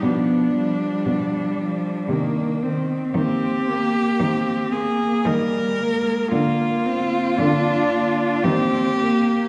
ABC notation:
X:1
M:3/4
L:1/8
Q:1/4=57
K:Eb
V:1 name="Cello"
D4- D z | G3 A B2 | F4 G2 |]
V:2 name="Cello"
=B, G,3 _B, C | C B, C B, G, A, | B, C D2 C B, |]
V:3 name="Cello"
F, F,2 F, E, E, | B, B,2 B,2 B, | z B,2 B, B, B, |]
V:4 name="Cello" clef=bass
=B,,2 B,,2 C,2 | E,2 E,2 E,2 | D,2 D,2 E,2 |]